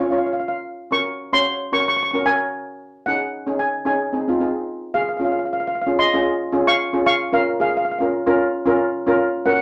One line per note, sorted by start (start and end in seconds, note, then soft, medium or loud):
0.03 0.09 F5 soft
0.10 0.60 C#4 medium
0.10 0.61 F4 medium
0.10 0.61 C#5 medium
0.10 0.17 F5 soft
0.18 0.25 F5 soft
0.26 0.32 F5 soft
0.33 0.38 F5 medium
0.40 0.47 F5 soft
0.48 0.56 F5 medium
0.91 1.16 C#4 medium
0.91 1.16 F#4 medium
0.91 1.16 A#4 medium
0.91 1.34 C#6 loud
1.33 1.57 C#4 medium
1.33 1.57 F#4 medium
1.33 1.58 C#5 medium
1.33 1.74 C6 loud
1.72 1.97 C#4 medium
1.72 1.97 F#4 medium
1.72 1.97 A#4 medium
1.72 1.79 C#6 loud
1.80 1.87 C#6 medium
1.88 1.95 C#6 medium
1.96 2.02 C#6 medium
2.03 2.10 C#6 medium
2.11 2.21 C#4 medium
2.11 2.21 F#4 medium
2.11 2.22 A#4 medium
2.11 2.18 C#6 medium
2.26 2.74 C#4 medium
2.26 2.75 F#4 medium
2.26 2.75 A#4 medium
2.26 3.09 G#5 loud
3.06 3.31 C#4 medium
3.06 3.31 D#4 medium
3.06 3.32 G#4 medium
3.06 3.61 F#5 medium
3.47 3.71 C#4 medium
3.47 3.71 D#4 medium
3.47 3.71 G#4 medium
3.59 3.85 G#5 medium
3.85 4.10 C#4 medium
3.85 4.10 D#4 medium
3.85 4.11 G#4 medium
3.85 4.89 G#5 medium
4.13 4.24 C4 medium
4.13 4.25 D#4 medium
4.13 4.25 G#4 medium
4.28 4.35 C4 medium
4.28 4.35 D#4 medium
4.28 4.36 F4 medium
4.40 4.88 C4 medium
4.40 4.88 D#4 medium
4.40 4.89 G#4 medium
4.94 5.01 G#4 medium
4.94 5.00 F5 medium
5.01 5.08 F5 medium
5.09 5.16 F5 soft
5.17 5.60 C#4 medium
5.17 5.61 F4 medium
5.17 5.61 G#4 medium
5.17 5.23 F5 soft
5.25 5.31 F5 medium
5.32 5.38 F5 soft
5.39 5.44 F5 soft
5.45 5.52 F5 soft
5.53 5.59 F5 medium
5.60 5.66 F5 medium
5.67 5.74 F5 medium
5.75 5.80 F5 soft
5.82 5.90 F5 medium
5.86 6.02 C#4 medium
5.86 6.02 F4 medium
5.86 6.03 G#4 medium
5.99 6.63 D#5 medium
5.99 6.69 C6 loud
6.14 6.38 C#4 medium
6.14 6.38 F4 medium
6.14 6.38 G#4 medium
6.52 6.77 C#4 medium
6.52 6.77 F4 medium
6.52 6.77 G#4 medium
6.67 7.04 F5 medium
6.67 7.05 C#6 loud
6.93 7.17 C#4 medium
6.93 7.17 F4 medium
6.93 7.18 G#4 medium
7.06 7.31 F5 medium
7.06 7.34 C#6 loud
7.32 7.73 C#4 medium
7.32 7.73 F4 medium
7.32 7.58 A#4 medium
7.32 7.74 A#4 medium
7.32 7.58 F5 medium
7.60 7.67 G#4 medium
7.60 7.68 F5 medium
7.70 7.76 F5 medium
7.77 7.83 F5 medium
7.85 7.90 F5 medium
7.91 7.97 F5 medium
7.99 8.16 C#4 medium
7.99 8.16 F4 medium
7.99 8.16 A#4 medium
7.99 8.05 F5 soft
8.27 8.50 C#4 medium
8.27 8.51 F4 medium
8.27 8.51 A#4 loud
8.66 8.90 C#4 loud
8.66 8.90 F4 medium
8.66 8.91 A#4 loud
9.06 9.30 C#4 medium
9.06 9.31 F4 medium
9.06 9.31 A#4 loud
9.45 9.62 C#4 medium
9.45 9.62 F#4 medium
9.45 9.53 A#4 medium
9.45 9.62 A#4 medium
9.45 9.52 F#5 medium
9.53 9.60 F#5 medium